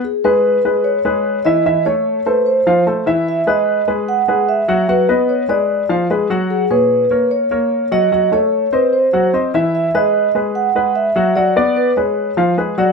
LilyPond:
<<
  \new Staff \with { instrumentName = "Vibraphone" } { \time 4/4 \key cis \minor \tempo 4 = 148 gis'8 b'4. cis''4. dis''8~ | dis''8 cis''4 b'8 c''4 r4 | e''8 dis''4 r8 fis''4 e''4 | b'4 cis''8 d''4 r4. |
gis'8 b'4. cis''4. dis''8~ | dis''8 cis''4 b'8 c''4 r4 | e''8 dis''4 r8 fis''4 e''4 | d''4 b'8 cis''4 r4 d''8 | }
  \new Staff \with { instrumentName = "Upright piano" } { \time 4/4 \key cis \minor r8 <gis gis' b'>4 <gis gis' b'>4 <gis gis' b'>4 <e e' e''>8 | <e e' e''>8 <a a' cis''>4 <a a' bis'>4 <f f' f''>8 <a a' c''>8 <e e' e''>8~ | <e e' e''>8 <gis gis' b'>4 <gis gis' b'>4 <gis gis' b'>4 <fis fis' fis''>8 | <fis fis' fis''>8 <b b' dis''>4 <gis gis' b'>4 <f f' f''>8 <aes aes' ces''>8 <fis fis' fis''>8~ |
<fis fis' fis''>8 <ais, gis' cis''>4 <ais ais' cis''>4 <ais ais' cis''>4 <fis fis' fis''>8 | <fis fis' fis''>8 <a a' cis''>4 <bis bis' dis''>4 <ges ges' ges''>8 <c' c'' ees''>8 <e e' e''>8~ | <e e' e''>8 <gis gis' b'>4 <gis gis' b'>4 <gis gis' b'>4 <fis fis' fis''>8 | <fis fis' fis''>8 <b b' d''>4 <gis gis' b'>4 <f f' f''>8 <aes aes' ces''>8 <fis fis' fis''>8 | }
>>